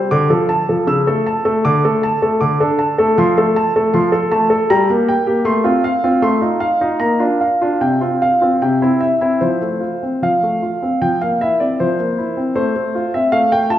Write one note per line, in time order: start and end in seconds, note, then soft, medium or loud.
0.00 0.10 G3 medium
0.00 0.11 C5 medium
0.11 0.30 D3 medium
0.11 0.31 D6 medium
0.30 0.50 F3 soft
0.30 0.50 A4 medium
0.49 0.69 A5 medium
0.69 0.88 F3 soft
0.69 0.88 A4 soft
0.87 1.06 C#3 medium
0.87 1.08 E6 medium
1.07 1.27 A3 soft
1.07 1.27 A4 medium
1.26 1.46 A5 medium
1.45 1.64 A3 medium
1.45 1.64 A4 medium
1.65 1.83 D3 medium
1.65 1.85 D6 medium
1.85 2.04 A3 soft
1.85 2.04 A4 medium
2.03 2.23 A5 medium
2.22 2.42 A3 medium
2.22 2.42 A4 medium
2.41 2.60 D3 medium
2.41 2.61 D6 medium
2.60 2.80 D4 medium
2.60 2.80 A4 medium
2.79 2.99 A5 medium
2.98 3.18 A3 medium
2.98 3.18 A4 medium
3.18 3.36 F3 medium
3.18 3.38 C6 medium
3.37 3.57 A3 medium
3.37 3.57 A4 medium
3.56 3.76 A5 medium
3.76 3.96 A3 soft
3.76 3.96 A4 medium
3.94 4.13 F3 medium
3.94 4.14 C6 medium
4.12 4.33 A4 medium
4.32 4.52 A3 medium
4.32 4.52 A5 medium
4.50 4.70 A4 medium
4.70 4.89 G3 medium
4.70 4.90 A#5 medium
4.90 5.09 A#3 medium
4.90 5.09 G4 medium
5.08 5.28 G5 medium
5.27 5.46 A#3 soft
5.27 5.46 G4 medium
5.45 5.64 A3 medium
5.45 5.66 C6 medium
5.64 5.85 C4 medium
5.64 5.85 F4 medium
5.84 6.04 F5 medium
6.04 6.23 C4 medium
6.04 6.23 F4 medium
6.22 6.41 A3 medium
6.22 6.43 C6 medium
6.41 6.62 D#4 soft
6.41 6.62 F4 soft
6.60 6.82 F5 medium
6.81 7.01 D#4 medium
6.81 7.01 F4 soft
7.00 7.20 A#3 medium
7.00 7.21 A#5 medium
7.20 7.41 D4 medium
7.20 7.42 F4 medium
7.41 7.62 F5 soft
7.62 7.82 D4 medium
7.62 7.82 F4 medium
7.81 8.01 C3 medium
7.81 8.03 G5 medium
8.01 8.22 C4 soft
8.01 8.23 F4 soft
8.22 8.43 F5 medium
8.41 8.62 C4 soft
8.41 8.62 F4 soft
8.62 8.82 C3 medium
8.62 8.83 G5 medium
8.82 9.03 C4 soft
8.82 9.03 E4 medium
9.00 9.22 E5 medium
9.21 9.41 C4 soft
9.21 9.42 E4 medium
9.41 9.61 F3 soft
9.41 10.22 C5 medium
9.62 9.83 A3 soft
9.81 10.03 F4 soft
10.03 10.24 C4 soft
10.22 10.42 F3 soft
10.22 11.01 F5 medium
10.43 10.63 A3 soft
10.62 10.83 F4 soft
10.82 11.01 C4 soft
11.02 11.20 F3 soft
11.02 11.21 G5 medium
11.21 11.42 A#3 soft
11.21 11.40 F5 medium
11.41 11.61 E4 soft
11.41 11.60 E5 medium
11.60 11.80 C4 soft
11.60 11.79 D5 medium
11.80 11.98 F3 soft
11.80 12.53 C5 medium
11.99 12.19 A#3 soft
12.18 12.38 E4 soft
12.37 12.56 C4 soft
12.55 12.75 A3 soft
12.55 13.10 C5 medium
12.76 12.96 A3 soft
12.95 13.15 F4 soft
13.14 13.35 C4 soft
13.14 13.34 E5 medium
13.32 13.51 A3 soft
13.32 13.52 F5 medium
13.52 13.73 A3 soft
13.52 13.72 G5 medium
13.70 13.79 F4 soft
13.70 13.79 A5 medium